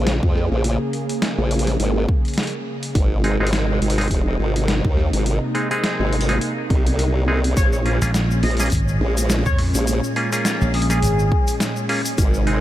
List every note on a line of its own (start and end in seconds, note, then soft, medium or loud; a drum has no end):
0.00 0.20 A#1 medium
0.00 2.91 C#3 medium
0.00 2.91 A#3 medium
0.00 2.91 G#4 medium
0.07 snare loud
0.07 closed hi-hat medium
0.23 0.49 F2 medium
0.23 kick loud
0.36 snare soft
0.52 0.78 A#1 medium
0.64 closed hi-hat medium
0.93 closed hi-hat soft
1.09 closed hi-hat medium
1.22 snare loud
1.22 closed hi-hat medium
1.38 1.78 A#1 medium
1.51 closed hi-hat soft
1.59 closed hi-hat medium
1.67 snare soft
1.67 closed hi-hat soft
1.80 2.07 G#1 medium
1.80 closed hi-hat medium
2.09 kick loud
2.25 closed hi-hat soft
2.28 closed hi-hat soft
2.34 closed hi-hat soft
2.38 snare loud
2.38 closed hi-hat medium
2.43 closed hi-hat soft
2.47 closed hi-hat soft
2.83 closed hi-hat medium
2.95 3.38 G#1 medium
2.95 7.53 C3 medium
2.95 5.24 G#3 medium
2.95 7.53 D#4 medium
2.95 kick loud
2.95 closed hi-hat medium
3.24 3.36 G#3 medium
3.24 3.36 C4 medium
3.24 3.36 D#4 medium
3.24 3.36 G#4 medium
3.24 closed hi-hat soft
3.40 3.80 G#1 loud
3.40 3.50 G#3 medium
3.40 3.50 C4 medium
3.40 3.50 D#4 medium
3.40 3.50 G#4 medium
3.47 closed hi-hat medium
3.53 snare loud
3.53 closed hi-hat medium
3.82 4.08 G#1 medium
3.82 closed hi-hat soft
3.90 closed hi-hat medium
3.98 4.07 G#3 medium
3.98 4.07 C4 medium
3.98 4.07 D#4 medium
3.98 4.07 G#4 medium
3.98 snare soft
3.98 closed hi-hat soft
4.01 closed hi-hat soft
4.04 closed hi-hat soft
4.08 4.37 F1 medium
4.08 kick medium
4.08 closed hi-hat soft
4.11 closed hi-hat medium
4.39 4.82 G#1 loud
4.56 closed hi-hat medium
4.68 snare loud
4.68 closed hi-hat medium
4.85 5.11 D#2 medium
4.85 kick loud
4.97 snare soft
5.13 5.39 G#1 medium
5.13 closed hi-hat medium
5.26 7.54 A#3 medium
5.26 closed hi-hat medium
5.55 5.69 G#3 medium
5.55 5.69 C4 medium
5.55 5.69 D#4 medium
5.55 5.69 G#4 medium
5.55 closed hi-hat soft
5.71 6.25 G#3 medium
5.71 6.25 C4 medium
5.71 6.25 D#4 medium
5.71 6.25 G#4 loud
5.71 closed hi-hat soft
5.84 snare loud
5.84 closed hi-hat medium
6.00 6.39 G#1 medium
6.13 closed hi-hat soft
6.21 closed hi-hat medium
6.29 6.38 G#3 medium
6.29 6.38 C4 medium
6.29 6.38 D#4 medium
6.29 6.38 G#4 medium
6.29 snare soft
6.29 closed hi-hat soft
6.41 closed hi-hat medium
6.70 7.55 C2 medium
6.70 kick loud
6.70 closed hi-hat soft
6.87 closed hi-hat soft
6.99 closed hi-hat medium
7.28 7.40 G#3 medium
7.28 7.40 C4 medium
7.28 7.40 D#4 medium
7.28 7.40 G#4 medium
7.44 closed hi-hat medium
7.57 7.99 A#1 medium
7.57 12.14 A#2 medium
7.57 12.61 G#3 medium
7.57 12.14 C#4 medium
7.57 7.67 C#5 medium
7.57 kick loud
7.57 closed hi-hat medium
7.57 shaker medium
7.73 7.81 C#5 medium
7.73 shaker soft
7.86 7.98 A#3 medium
7.86 7.98 C#4 medium
7.86 7.98 F4 medium
7.86 7.98 G#4 medium
7.86 closed hi-hat soft
8.02 8.41 A#1 medium
8.02 8.11 A#3 medium
8.02 8.11 C#4 medium
8.02 8.11 F4 medium
8.02 8.11 G#4 medium
8.02 closed hi-hat soft
8.02 shaker medium
8.14 snare loud
8.14 closed hi-hat medium
8.14 shaker medium
8.31 shaker soft
8.43 8.70 A#1 medium
8.43 8.54 D#5 medium
8.43 open hi-hat medium
8.51 closed hi-hat soft
8.57 8.67 D#5 medium
8.57 snare soft
8.57 closed hi-hat soft
8.57 shaker medium
8.60 8.69 A#3 medium
8.60 8.69 C#4 medium
8.60 8.69 F4 medium
8.60 8.69 G#4 medium
8.60 closed hi-hat soft
8.62 closed hi-hat soft
8.66 closed hi-hat soft
8.70 kick medium
8.70 closed hi-hat soft
8.70 shaker medium
8.72 8.99 G#1 medium
8.72 closed hi-hat medium
8.75 closed hi-hat medium
8.88 shaker soft
9.01 9.43 A#1 medium
9.17 closed hi-hat soft
9.17 shaker medium
9.30 snare loud
9.30 closed hi-hat medium
9.30 shaker medium
9.46 9.72 F2 medium
9.46 9.57 C#5 medium
9.46 kick loud
9.46 shaker soft
9.59 snare soft
9.59 open hi-hat medium
9.75 10.01 A#1 medium
9.75 closed hi-hat soft
9.75 shaker medium
9.87 closed hi-hat medium
9.87 shaker medium
10.04 shaker soft
10.16 10.30 A#3 medium
10.16 10.30 C#4 medium
10.16 10.30 F4 medium
10.16 10.30 G#4 medium
10.16 closed hi-hat soft
10.32 10.86 A#3 medium
10.32 10.86 C#4 medium
10.32 10.86 F4 medium
10.32 10.86 G#4 loud
10.32 closed hi-hat soft
10.32 shaker medium
10.45 snare loud
10.45 closed hi-hat medium
10.45 shaker medium
10.61 11.01 A#1 medium
10.61 shaker soft
10.74 11.56 G#4 loud
10.74 open hi-hat medium
10.82 closed hi-hat medium
10.90 10.99 A#3 medium
10.90 10.99 C#4 medium
10.90 10.99 F4 medium
10.90 10.99 G#4 medium
10.90 snare soft
10.90 closed hi-hat soft
10.90 shaker medium
11.02 11.30 G#1 loud
11.02 closed hi-hat medium
11.02 shaker medium
11.19 shaker soft
11.32 kick loud
11.48 closed hi-hat soft
11.48 shaker medium
11.60 snare loud
11.60 closed hi-hat medium
11.60 shaker medium
11.77 shaker soft
11.89 12.01 A#3 medium
11.89 12.01 C#4 medium
11.89 12.01 F4 medium
11.89 12.01 G#4 loud
11.89 open hi-hat medium
12.05 closed hi-hat medium
12.05 shaker medium
12.18 12.61 G#1 medium
12.18 12.61 C3 medium
12.18 12.61 D#4 medium
12.18 kick loud
12.18 closed hi-hat medium
12.18 shaker medium
12.34 shaker soft
12.47 12.59 G#3 medium
12.47 12.59 C4 medium
12.47 12.59 D#4 medium
12.47 12.59 G#4 medium
12.47 closed hi-hat soft